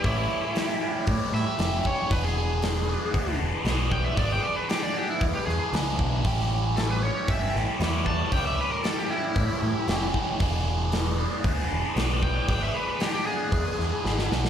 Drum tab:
HH |o---o---o---o---|o---o---o---o---|o---o---o---o---|o---o---o---o---|
SD |----o-----o-o---|----o-------o---|----o-----o-o---|----o-----o-o---|
BD |o-------o-----o-|o-------o-----o-|o-------o-----o-|o-------o-----o-|

HH |o---o---o---o---|o---o---o---o---|o---o---o-------|
SD |----o-------o---|----o-------o---|----o-----o-oooo|
BD |o-------o-----o-|o-------o-----o-|o-------o-------|